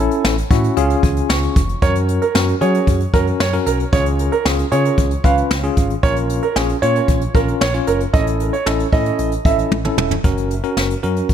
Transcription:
Already playing: C#4 E4 A4
0.11 closed hi-hat
0.24 A1, snare
0.38 closed hi-hat
0.51 A2 C#4 E4 F#4 E5, kick, closed hi-hat
0.64 closed hi-hat
0.77 C#2 C#4 F4 G#4 F5, closed hi-hat
0.90 closed hi-hat
1.03 C#2 G#5, kick, closed hi-hat
1.17 closed hi-hat
1.29 C#2 C#6, snare
1.43 closed hi-hat
1.56 F1, kick, closed hi-hat
1.69 closed hi-hat
1.82 F#2 C#4 F#4 A#4 C#5, kick, closed hi-hat
1.95 closed hi-hat
2.09 closed hi-hat
2.22 A#4, closed hi-hat
2.35 F#2 C#4 F#4 A#4, snare
2.48 closed hi-hat
2.61 F#3 C#4 F#4 G#4 C#5, closed hi-hat
2.75 closed hi-hat
2.87 F#2, kick, closed hi-hat
3.00 closed hi-hat
3.14 F#2 C#4 F#4 A#4, kick, closed hi-hat
3.27 closed hi-hat
3.40 F#2 C#5, snare
3.53 C#4 F#4 A#4, closed hi-hat
3.66 B1 A#4, closed hi-hat
3.80 closed hi-hat
3.93 C#2 C#4 F4 G#4 C#5, kick, closed hi-hat
4.06 closed hi-hat
4.19 closed hi-hat
4.32 A#4, closed hi-hat
4.45 C#2 C#4 F4 G#4, snare
4.59 closed hi-hat
4.72 C#3 C#4 F4 G#4 C#5, closed hi-hat
4.85 closed hi-hat
4.98 C#2, kick, closed hi-hat
5.11 closed hi-hat
5.24 C#2 C#4 F4 B4 F5, kick, closed hi-hat
5.38 closed hi-hat
5.51 C#2, snare
5.64 C#4 F4 G#4, closed hi-hat
5.77 G#1, kick, closed hi-hat
5.90 closed hi-hat
6.03 A#1 C#4 F4 A#4 C#5, kick, closed hi-hat
6.16 closed hi-hat
6.30 closed hi-hat
6.43 A#4, closed hi-hat
6.56 A#1 C#4 F4 G#4, snare
6.69 closed hi-hat
6.82 A#2 C#4 F4 C#5, closed hi-hat
6.96 closed hi-hat
7.08 A#1, kick, closed hi-hat
7.21 closed hi-hat
7.35 A#1 C#4 F4 A#4, kick, closed hi-hat
7.48 closed hi-hat
7.61 A#1 C#5, snare
7.74 C#4 F4 C#5, closed hi-hat
7.87 F#1 A#4, closed hi-hat
8.01 closed hi-hat
8.13 A1 C#4 E4 A4 D#5, kick, closed hi-hat
8.27 closed hi-hat
8.40 closed hi-hat
8.53 C#5, closed hi-hat
8.66 A1 C#4 E4 A4, snare
8.80 closed hi-hat
8.93 A2 C#4 E4 A4 D#5, kick, open hi-hat
9.06 closed hi-hat
9.19 A1, closed hi-hat
9.32 closed hi-hat
9.45 A1 C#4 E4 A4 E5, kick, closed hi-hat
9.59 closed hi-hat
9.72 A1, high tom
9.85 C#4 E4 A4, mid tom
9.98 E1, mid tom
10.11 floor tom
10.24 F#1 C#4 F#4 A#4, kick, closed hi-hat
10.38 closed hi-hat
10.51 closed hi-hat
10.64 C#4 F#4 A#4, closed hi-hat
10.77 F#1, snare
10.90 closed hi-hat
11.03 F#2 C#4 F#4 A#4, closed hi-hat
11.17 closed hi-hat
11.29 F#1, kick, closed hi-hat

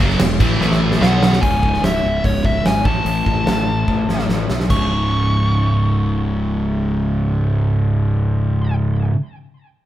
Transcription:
0.00 F#1 F#2 C#3 F#3
0.10 snare
0.20 E1 E2 B2, snare, crash
0.39 A1 A2 E3 A3, kick, crash
0.59 A1 A2 E3 A3, snare
0.72 snare
0.92 snare
1.01 B1 B2 F#3 B3 F#5, snare
1.23 snare
1.33 snare
1.41 C#1 C#2 G#2 C#3 G#5, kick, open hi-hat
1.63 kick
1.74 snare
1.83 C#1 E5, snare, open hi-hat
2.04 C#1
2.24 C#1 C#5, kick, open hi-hat
2.45 E5, kick
2.65 G#1 G#5, snare, open hi-hat
2.84 A1 A2 E3 A3 A5, kick
3.05 A1, open hi-hat
3.26 A1, kick
3.47 A1, snare, open hi-hat
3.88 A1, kick
4.08 A1, snare
4.19 snare
4.29 A1, snare
4.50 B1, snare
4.60 snare
4.69 C#1 C#2 G#2 C#3 C#6, kick, crash

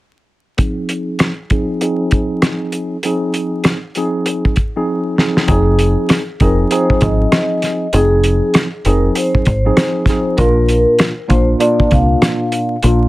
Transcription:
0.58 F3 C4 D#4 G#4, kick, closed hi-hat
0.89 closed hi-hat
1.19 cross-stick, snare, closed hi-hat
1.50 F3 C4 D#4 G#4, kick, closed hi-hat
1.81 F3 C4 D#4 G#4, closed hi-hat
2.11 kick, closed hi-hat
2.42 cross-stick, snare, closed hi-hat
2.72 closed hi-hat
3.03 F3 C4 D#4 G#4, closed hi-hat
3.34 closed hi-hat
3.64 cross-stick, snare, closed hi-hat
3.95 F3 C4 D#4 G#4, closed hi-hat
4.26 closed hi-hat
4.45 kick
4.56 kick, closed hi-hat
4.76 F3 C4 D#4 G#4
5.18 F3 C4 D#4 G#4, snare
5.37 snare
5.47 F1 F3 C4 D#4 G#4, kick, closed hi-hat
5.79 closed hi-hat
6.09 cross-stick, snare, closed hi-hat
6.40 F1 F3 C4 D#4 G#4 A#4, kick, closed hi-hat
6.71 F3 C4 D#4 G#4 C5, closed hi-hat
6.90 muted fingered electric bass stroke, kick
7.01 G#1 D#5, kick, closed hi-hat
7.32 cross-stick, snare, closed hi-hat
7.62 snare, closed hi-hat
7.93 F1 F3 C4 D#4 G#4, closed hi-hat
8.24 closed hi-hat
8.54 cross-stick, snare, closed hi-hat
8.85 F1 F3 C4 D#4 G#4 A#4, closed hi-hat
9.15 C5, closed hi-hat
9.35 muted fingered electric bass stroke, kick
9.45 G#1 C5, kick, closed hi-hat
9.65 F3 C4 D#4 G#4
9.77 cross-stick, snare, closed hi-hat
10.06 F3 C4 D#4 G#4, kick, snare, closed hi-hat
10.37 A#1 A#2 A#3 D4 F4 A#4, kick, closed hi-hat
10.69 closed hi-hat
10.99 cross-stick, snare, closed hi-hat
11.28 A#1 A#2 A#3 D4 F4 C5, kick, closed hi-hat
11.59 A#2 A#3 D4 F4 D5, closed hi-hat
11.80 muted fingered electric bass stroke, kick
11.91 C2 F5, kick, closed hi-hat
12.22 cross-stick, snare, closed hi-hat
12.52 closed hi-hat
12.83 A#1 A#2 A#3 D4 F4, closed hi-hat

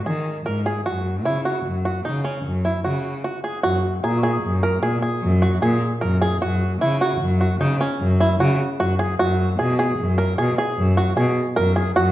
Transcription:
0.06 D#3 G#4
0.45 G#2 A#4
0.66 G#4
0.85 F#2 F#4
1.25 C#3 E4
1.45 F#4
1.66 F#2
1.85 F#4
2.05 C#3 D#4
2.24 C#4
2.45 F#2
2.65 E4
2.84 C#3 F#4
3.24 F#4
3.44 G#4
3.63 F#2 F#4
4.03 A#2 G#4 A#5
4.18 C#6
4.23 G#4
4.33 D#6
4.43 F#2
4.63 A#4
4.83 A#2 G#4
5.02 G#4
5.22 F#2
5.42 F#4
5.62 A#2 G#4
6.01 F#2 A#4
6.21 G#4
6.42 F#2 F#4
6.81 C#3 E4
7.01 F#4
7.21 F#2
7.41 F#4
7.60 C#3 D#4
7.81 C#4
8.00 F#2
8.20 E4
8.40 C#3 F#4
8.80 F#2 F#4
8.99 G#4
9.19 F#2 F#4
9.59 B2 G#4
9.79 G#4
9.98 F#2
10.18 A#4
10.38 B2 G#4
10.58 G#4
10.77 F#2
10.97 F#4
11.17 B2 G#4
11.56 F#2 A#4
11.76 G#4
11.96 F#2 F#4

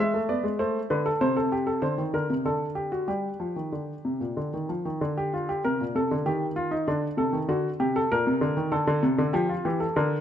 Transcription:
0.00 G#3 E5
0.14 A3
0.29 B3 D5
0.44 G#3
0.59 A3 C5
0.90 D3 B4
1.06 A4
1.21 C3 C5
1.37 A4
1.52 G4
1.67 A4
1.82 D3 C5
1.98 D#3
2.14 D3 A#4
2.30 C3
2.45 D3 A4
2.75 G4
2.92 F#4
3.08 G3 G4
3.40 F3
3.56 D#3
3.72 D3
4.05 C3
4.21 A#2
4.37 D3
4.54 D#3
4.69 F3
4.85 D#3
5.01 D3
5.17 G4
5.34 F4
5.49 G4
5.64 C3 A#4
5.81 A#2
5.95 C3 A4
6.11 D3
6.26 D#3 G4
6.56 F4
6.71 D#4
6.88 D3 D4
7.17 C3 A4
7.33 D#3
7.48 D3 F#4
7.80 C3 G4
7.96 A4
8.12 A#2 A#4
8.27 C3
8.41 D3
8.57 D#3
8.72 D3 A4
8.87 D3
9.03 C3
9.18 D3
9.33 F3 G4
9.49 F4
9.65 E3 G4
9.80 A4
9.96 D3 A#4

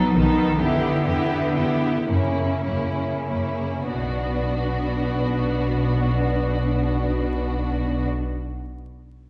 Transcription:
Already playing: F#3 B3 D#4 A4
0.15 B1 D#3 B3 D#4 A4
0.59 E2 D3 B3 E4 G4
1.05 E2 B3 E4 G4
1.55 E2 B3 E4 G4
2.08 F#2 C#3 A#3 C#4 E4
2.66 F#2 A#3 C#4 E4
3.30 F#2 A#3 C#4 E4
3.90 B1 B2 B3 D4 F#4

